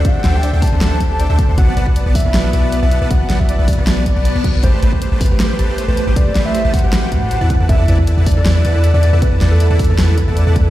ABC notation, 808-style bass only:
X:1
M:4/4
L:1/16
Q:1/4=157
K:Ador
V:1 name="808-style bass" clef=bass
D,,2 D,,3 D,,2 D,,3 D,,3 D,,2 D,, | B,,,2 B,,,3 B,,,2 B,,,3 B,,,3 B,,,2 B,,, | B,,,2 B,,,3 B,,,2 B,,,4 B,,,2 B,,,3 | A,,,2 A,,,3 A,,,2 A,,,3 A,,,3 A,,,2 A,,, |
A,,,2 A,,,3 A,,,2 A,,,3 A,,3 E,,2 E,, | E,,2 E,,3 E,,2 E,,3 E,,3 E,,2 E,, | z2 E,,3 E,,2 E,,4 E,,2 E,,3 |]